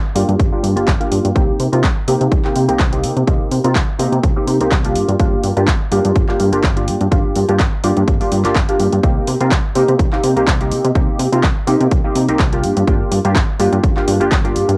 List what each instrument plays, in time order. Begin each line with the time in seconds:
0.15 analog synth bass G2, analog polysynth A#3 D4 F4 G4, open hi-hat
0.29 analog synth bass G2, closed hi-hat
0.40 analog synth bass G1, kick, closed hi-hat
0.52 analog synth bass G2, analog polysynth A#3 D4 F4 G4
0.63 analog synth bass G2, open hi-hat
0.76 analog synth bass G1, analog polysynth A#3 D4 F4 G4, closed hi-hat
0.88 analog synth bass G1, kick, clap, closed hi-hat
1.00 analog polysynth A#3 D4 F4 G4, closed hi-hat
1.12 analog synth bass G2, open hi-hat
1.25 analog synth bass G2, closed hi-hat
1.35 analog synth bass C2, analog polysynth A#3 C4 D#4 G4, kick, closed hi-hat
1.60 analog synth bass C3, open hi-hat
1.72 analog synth bass C3, analog polysynth A#3 C4 D#4 F4, closed hi-hat
1.84 analog synth bass C2, kick, clap, closed hi-hat
2.07 analog synth bass C3, analog polysynth A#3 C4 D#4 G4, open hi-hat
2.21 analog synth bass C3, closed hi-hat
2.32 analog synth bass C2, kick, closed hi-hat
2.44 analog synth bass C3, analog polysynth A#3 C4 D#4 G4, clap
2.56 analog synth bass C3, open hi-hat
2.68 analog synth bass C2, analog polysynth A#3 C4 D#4 G4, closed hi-hat
2.80 analog synth bass C2, kick, clap, closed hi-hat
2.92 analog polysynth A#3 C4 D#4 G4, closed hi-hat
3.03 analog synth bass C3, open hi-hat
3.17 analog synth bass C3, closed hi-hat
3.27 analog synth bass C2, analog polysynth A#3 C4 D#4 G4, kick, closed hi-hat
3.41 analog synth bass C3
3.51 analog synth bass C3, open hi-hat
3.64 analog synth bass C3, analog polysynth A#3 C4 D#4 F4, closed hi-hat
3.76 analog synth bass C2, kick, clap, closed hi-hat
3.99 analog synth bass C3, analog polysynth A#3 C4 D#4 G4, open hi-hat
4.12 analog synth bass C3, closed hi-hat
4.23 analog synth bass C2, kick, closed hi-hat
4.36 analog synth bass C3, analog polysynth A#3 C4 D#4 G4
4.47 analog synth bass C3, open hi-hat
4.60 analog synth bass C2, analog polysynth A#3 C4 D#4 G4, closed hi-hat
4.72 analog synth bass C2, kick, clap, closed hi-hat
4.85 analog polysynth A#3 D4 F4 G4, closed hi-hat
4.95 analog synth bass G2, open hi-hat
5.08 analog synth bass G2, closed hi-hat
5.19 analog synth bass G1, analog polysynth A#3 D4 F4 G4, kick, closed hi-hat
5.43 analog synth bass G2, open hi-hat
5.57 analog synth bass G2, analog polysynth A#3 D4 F4 G4, closed hi-hat
5.68 analog synth bass G1, kick, clap, closed hi-hat
5.91 analog synth bass G2, analog polysynth A#3 D4 F4 G4, open hi-hat
6.05 analog synth bass G2, closed hi-hat
6.16 analog synth bass G1, kick, closed hi-hat
6.28 analog synth bass G2, analog polysynth A#3 D4 F4 G4, clap
6.40 analog synth bass G2, open hi-hat
6.52 analog synth bass G1, analog polysynth A#3 D4 F4 G4, closed hi-hat
6.64 analog synth bass G1, kick, clap, closed hi-hat
6.76 analog polysynth A#3 D4 F4 G4, closed hi-hat
6.88 analog synth bass G2, open hi-hat
7.01 analog synth bass G2, closed hi-hat
7.11 analog synth bass G1, analog polysynth A#3 D4 F4 G4, kick, closed hi-hat
7.36 analog synth bass G2, open hi-hat
7.49 analog synth bass G2, analog polysynth A#3 D4 F4 G4, closed hi-hat
7.60 analog synth bass G1, kick, clap, closed hi-hat
7.84 analog synth bass G2, analog polysynth A#3 D4 F4 G4, open hi-hat
7.97 analog synth bass G2, closed hi-hat
8.08 analog synth bass G1, kick, closed hi-hat
8.20 analog synth bass G2, analog polysynth A#3 D4 F4 G4, open hi-hat
8.32 analog synth bass G2, open hi-hat
8.44 analog synth bass G1, analog polysynth A#3 D4 F4 G4, clap, closed hi-hat
8.56 analog synth bass G1, kick, clap, closed hi-hat
8.69 analog polysynth A#3 D4 F4 G4, closed hi-hat
8.80 analog synth bass G2, open hi-hat
8.93 analog synth bass G2, closed hi-hat
9.03 analog synth bass C2, analog polysynth A#3 C4 D#4 G4, kick, closed hi-hat
9.27 analog synth bass C3, open hi-hat
9.40 analog synth bass C3, analog polysynth A#3 C4 D#4 F4, closed hi-hat
9.51 analog synth bass C2, kick, clap, closed hi-hat
9.75 analog synth bass C3, analog polysynth A#3 C4 D#4 G4, open hi-hat
9.89 analog synth bass C3, closed hi-hat
9.99 analog synth bass C2, kick, closed hi-hat
10.12 analog synth bass C3, analog polysynth A#3 C4 D#4 G4, clap
10.24 analog synth bass C3, open hi-hat
10.36 analog synth bass C2, analog polysynth A#3 C4 D#4 G4, closed hi-hat
10.47 analog synth bass C2, kick, clap, closed hi-hat
10.60 analog polysynth A#3 C4 D#4 G4, closed hi-hat
10.71 analog synth bass C3, open hi-hat
10.85 analog synth bass C3, closed hi-hat
10.95 analog synth bass C2, analog polysynth A#3 C4 D#4 G4, kick, closed hi-hat
11.08 analog synth bass C3
11.19 analog synth bass C3, open hi-hat
11.32 analog synth bass C3, analog polysynth A#3 C4 D#4 F4, closed hi-hat
11.43 analog synth bass C2, kick, clap, closed hi-hat
11.67 analog synth bass C3, analog polysynth A#3 C4 D#4 G4, open hi-hat
11.80 analog synth bass C3, closed hi-hat
11.91 analog synth bass C2, kick, closed hi-hat
12.04 analog synth bass C3, analog polysynth A#3 C4 D#4 G4
12.15 analog synth bass C3, open hi-hat
12.28 analog synth bass C2, analog polysynth A#3 C4 D#4 G4, closed hi-hat
12.39 analog synth bass C2, kick, clap, closed hi-hat
12.52 analog polysynth A#3 D4 F4 G4, closed hi-hat
12.64 analog synth bass G2, open hi-hat
12.77 analog synth bass G2, closed hi-hat
12.87 analog synth bass G1, analog polysynth A#3 D4 F4 G4, kick, closed hi-hat
13.12 analog synth bass G2, open hi-hat
13.25 analog synth bass G2, analog polysynth A#3 D4 F4 G4, closed hi-hat
13.36 analog synth bass G1, kick, clap, closed hi-hat
13.59 analog synth bass G2, analog polysynth A#3 D4 F4 G4, open hi-hat
13.73 analog synth bass G2, closed hi-hat
13.84 analog synth bass G1, kick, closed hi-hat
13.96 analog synth bass G2, analog polysynth A#3 D4 F4 G4, clap
14.08 analog synth bass G2, open hi-hat
14.20 analog synth bass G1, analog polysynth A#3 D4 F4 G4, closed hi-hat
14.32 analog synth bass G1, kick, clap, closed hi-hat
14.44 analog polysynth A#3 D4 F4 G4, closed hi-hat
14.56 analog synth bass G2, open hi-hat
14.69 analog synth bass G2, closed hi-hat